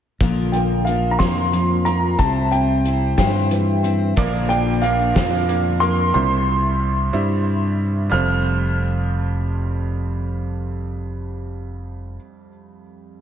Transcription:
0.21 fingered electric bass A#1, twelve-string acoustic guitar A#2 D3 F3 A#3 F4 A#4, steel-string acoustic guitar A#2, kick, closed hi-hat
0.52 steel-string acoustic guitar A#3, upright piano G5, closed hi-hat
0.85 twelve-string acoustic guitar F3 A#3, steel-string acoustic guitar D4, upright piano F5, closed hi-hat
0.89 twelve-string acoustic guitar F4 A#4
1.11 upright piano A#5
1.19 fingered electric bass F2, steel-string acoustic guitar F2, twelve-string acoustic guitar A#2 D3 F3 A#3 F4 A#4, upright piano C6, kick, snare, closed hi-hat
1.53 steel-string acoustic guitar F3, closed hi-hat
1.85 twelve-string acoustic guitar F3 A#3 F4 A#4, steel-string acoustic guitar A#3, upright piano A#5, closed hi-hat
2.18 fingered electric bass C2, twelve-string acoustic guitar C3 G3 C4 E4 C5, steel-string acoustic guitar C3, upright piano A5, kick, closed hi-hat
2.51 steel-string acoustic guitar C4, upright piano G5, closed hi-hat
2.84 twelve-string acoustic guitar G3 C4 E4 C5, steel-string acoustic guitar E4, closed hi-hat
3.17 fingered electric bass G2, steel-string acoustic guitar G2, twelve-string acoustic guitar C3 G3 C4 E4 C5, upright piano G5, kick, snare, closed hi-hat
3.51 steel-string acoustic guitar E3, closed hi-hat
3.83 steel-string acoustic guitar C4, twelve-string acoustic guitar C4 E4 C5, closed hi-hat
4.16 fingered electric bass A#1, grand piano A#1 A#2 F3 D4 A#4 D5, twelve-string acoustic guitar A#2 D3 F3 A#3 D4 A#4, upright piano A#3, kick, closed hi-hat
4.49 upright piano D4 G5, closed hi-hat
4.81 twelve-string acoustic guitar F3 A#3 D4 A#4, upright piano A#3 F5, closed hi-hat
5.15 fingered electric bass F2, twelve-string acoustic guitar A#2 D3 F3 A#3 D4 A#4, grand piano F3 D4 A#4 D5, upright piano F4, kick, snare, closed hi-hat
5.48 upright piano A#3, closed hi-hat
5.80 twelve-string acoustic guitar A#3 D4 A#4, upright piano A#4 C6, closed hi-hat
5.84 twelve-string acoustic guitar F3
6.14 grand piano C2 C3 G3 E4 C5 E5, fingered electric bass C2, upright piano C6
7.13 fingered electric bass G2, grand piano G3 E4 C5 E5
8.10 fingered electric bass F1, grand piano F2 G3 F4 A4, upright piano F6
8.14 grand piano C5

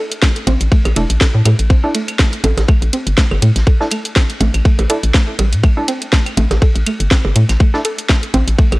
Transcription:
0.12 closed hi-hat
0.22 synth pluck A3, kick, snare, ride, claves
0.36 closed hi-hat
0.47 fm bass A1, synth pluck C4, closed hi-hat, ride, percussion blips
0.60 fm bass A1, closed hi-hat, ride
0.71 synth pluck A3, kick, ride
0.85 fm bass A1, closed hi-hat, ride, percussion blips, claves
0.96 fm bass E1, synth pluck A3, synth stab D4 E4 A4, closed hi-hat, ride
1.10 fm bass A1, closed hi-hat
1.20 synth pluck A4, kick, snare, ride
1.35 fm bass A2
1.45 fm bass A2, synth pluck A3, closed hi-hat, ride, percussion blips, claves
1.59 fm bass A1, closed hi-hat
1.70 synth pluck C4, kick, ride
1.84 synth stab D4 E4 A4
1.94 synth pluck A3, closed hi-hat, ride
2.08 closed hi-hat, claves
2.19 synth pluck A3, kick, snare, ride
2.33 closed hi-hat
2.44 fm bass A1, synth pluck A4, closed hi-hat, ride, percussion blips
2.57 fm bass A1, snare, closed hi-hat, percussion blips
2.68 synth pluck A3, kick, ride, claves
2.82 fm bass A1, closed hi-hat
2.93 synth pluck C4, closed hi-hat, ride
3.07 fm bass G1, closed hi-hat
3.18 synth pluck A3, kick, snare, ride
3.31 fm bass G1, percussion blips, claves
3.42 fm bass A2, synth pluck A3, closed hi-hat, ride
3.56 fm bass A1, snare, closed hi-hat
3.67 synth pluck A4, kick, ride
3.80 synth stab D4 E4 A4, snare
3.90 synth pluck A3, closed hi-hat, ride, claves
4.05 closed hi-hat
4.15 synth pluck C4, kick, snare, ride
4.30 closed hi-hat
4.40 fm bass A1, synth pluck A3, closed hi-hat, ride, percussion blips
4.54 fm bass A1, closed hi-hat, ride, claves
4.65 synth pluck A3, kick, ride
4.79 fm bass A1, closed hi-hat, ride, percussion blips
4.90 synth stab D4 E4 A4, synth pluck A4, closed hi-hat, ride
5.03 fm bass A1, closed hi-hat
5.14 synth pluck A3, kick, snare, ride, claves
5.39 fm bass A1, synth pluck G3, closed hi-hat, ride, percussion blips
5.53 fm bass A2, closed hi-hat
5.63 synth pluck A3, kick, ride, claves
5.77 synth stab D4 E4 A4
5.88 synth pluck C4, closed hi-hat, ride
6.02 closed hi-hat
6.13 synth pluck A3, kick, snare, ride
6.26 closed hi-hat, claves
6.37 fm bass A1, synth pluck A3, closed hi-hat, ride, percussion blips
6.50 fm bass A1, snare, closed hi-hat, percussion blips
6.62 synth pluck A4, kick, ride
6.75 fm bass A1, closed hi-hat
6.86 synth pluck A3, closed hi-hat, ride, claves
7.00 fm bass G1, closed hi-hat
7.11 synth pluck C4, kick, snare, ride
7.25 fm bass G1, percussion blips
7.35 fm bass A2, synth pluck A3, closed hi-hat, ride
7.49 fm bass A1, snare, closed hi-hat, claves
7.60 synth pluck A3, kick, ride
7.74 synth stab D4 E4 A4, snare
7.85 synth pluck A4, closed hi-hat, ride
7.98 closed hi-hat
8.09 synth pluck A3, kick, snare, ride, claves
8.23 closed hi-hat
8.34 fm bass A1, synth pluck C4, closed hi-hat, ride, percussion blips
8.48 fm bass A1, closed hi-hat, ride
8.58 synth pluck A3, kick, ride
8.72 fm bass A1, closed hi-hat, ride, percussion blips, claves

